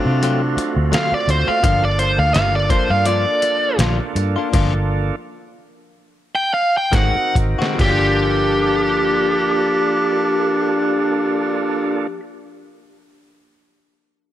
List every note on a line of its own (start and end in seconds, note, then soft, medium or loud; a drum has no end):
0.00 1.60 A3 medium
0.00 1.60 C4 medium
0.00 0.75 D4 loud
0.00 1.60 F4 medium
0.00 1.60 F#4 medium
0.06 0.54 C3 medium
0.06 0.22 C4 medium
0.06 0.22 F4 medium
0.10 0.22 A3 soft
0.22 0.42 F#3 medium
0.22 0.42 A3 medium
0.22 0.41 C4 medium
0.22 0.41 F4 medium
0.22 closed hi-hat medium
0.57 muted fingered electric bass stroke soft
0.57 muted clean electric guitar stroke soft
0.57 closed hi-hat medium
0.76 0.92 D2 medium
0.92 1.12 F#3 medium
0.92 1.12 A3 medium
0.92 1.11 C4 medium
0.92 1.11 F4 medium
0.92 1.13 F5 medium
0.92 snare loud
0.92 closed hi-hat medium
1.12 1.30 D5 medium
1.12 muted fingered electric bass stroke soft
1.12 muted clean electric guitar stroke soft
1.28 1.47 D2 medium
1.28 1.49 C5 medium
1.28 muted clean electric guitar stroke soft
1.28 closed hi-hat medium
1.48 1.63 A3 soft
1.48 1.64 C4 soft
1.48 1.64 F4 medium
1.48 1.63 F5 medium
1.63 2.15 G1 medium
1.63 1.83 F3 medium
1.63 4.49 A#3 medium
1.63 1.83 A#3 medium
1.63 4.49 D4 medium
1.63 1.83 D4 medium
1.63 4.49 F4 medium
1.63 1.82 F4 medium
1.63 4.49 A4 medium
1.63 1.83 F5 medium
1.63 kick loud
1.63 closed hi-hat medium
1.83 1.99 D5 medium
1.83 muted clean electric guitar stroke soft
1.99 2.18 C5 medium
1.99 muted clean electric guitar stroke soft
1.99 closed hi-hat medium
2.18 2.33 D2 medium
2.18 2.33 F5 medium
2.18 muted clean electric guitar stroke soft
2.34 2.68 G1 medium
2.34 2.54 F5 medium
2.34 muted clean electric guitar stroke soft
2.34 snare medium
2.34 closed hi-hat medium
2.55 2.70 D5 medium
2.70 2.90 F3 medium
2.70 2.91 A#3 medium
2.70 2.91 D4 medium
2.70 2.89 F4 medium
2.70 2.90 C5 medium
2.70 kick medium
2.70 closed hi-hat medium
2.90 3.24 G2 medium
2.90 3.05 A#3 soft
2.90 3.06 D4 medium
2.90 3.06 F4 medium
2.90 3.06 F5 medium
3.05 3.26 F3 medium
3.05 3.26 A#3 medium
3.05 3.26 D4 medium
3.05 3.25 F4 medium
3.05 3.77 D5 medium
3.05 closed hi-hat medium
3.26 muted clean electric guitar stroke soft
3.42 muted clean electric guitar stroke soft
3.42 closed hi-hat medium
3.78 3.98 A#1 medium
3.78 3.99 F3 medium
3.78 4.00 A#3 medium
3.78 3.99 D4 medium
3.78 3.98 F4 medium
3.78 snare loud
3.78 closed hi-hat medium
4.00 muted clean electric guitar stroke medium
4.15 4.35 G2 medium
4.15 muted clean electric guitar stroke soft
4.15 closed hi-hat medium
4.36 4.52 A#3 soft
4.36 4.53 D4 soft
4.36 4.53 F4 medium
4.53 5.10 G1 medium
4.53 4.74 F3 medium
4.53 4.75 A#3 medium
4.53 5.15 A#3 medium
4.53 5.15 D4 medium
4.53 4.74 D4 medium
4.53 5.16 F4 medium
4.53 4.73 F4 medium
4.53 5.16 A4 medium
4.53 kick loud
4.53 closed hi-hat medium
4.53 crash medium
4.74 muted clean electric guitar stroke soft
6.35 6.52 G5 medium
6.54 6.75 F5 medium
6.77 6.95 G5 medium
6.92 7.15 G#1 loud
6.92 7.16 D#3 medium
6.92 7.16 G#3 medium
6.92 7.79 C4 medium
6.92 7.16 C4 medium
6.92 7.79 D#4 medium
6.92 7.79 F#4 medium
6.92 7.15 F#4 medium
6.92 7.79 A#4 medium
6.92 7.35 F#5 medium
6.92 kick medium
6.92 snare medium
6.92 closed hi-hat medium
7.16 muted clean electric guitar stroke soft
7.16 muted fingered electric bass stroke soft
7.35 7.58 G#1 medium
7.35 muted clean electric guitar stroke soft
7.35 kick medium
7.35 closed hi-hat medium
7.59 7.80 G#3 soft
7.59 7.79 C4 soft
7.59 7.78 F#4 medium
7.59 snare medium
7.76 12.18 G1 medium
7.76 12.19 F3 medium
7.76 12.07 A#3 medium
7.76 12.07 D4 medium
7.76 12.07 F4 medium
7.76 12.07 A4 medium
7.76 kick loud
7.76 crash medium
7.81 7.90 F#3 medium
7.81 12.24 A#3 medium
7.81 7.90 A#3 medium
7.81 12.09 D4 loud
7.81 12.20 G4 medium
7.85 12.28 D4 medium
7.85 12.32 F4 medium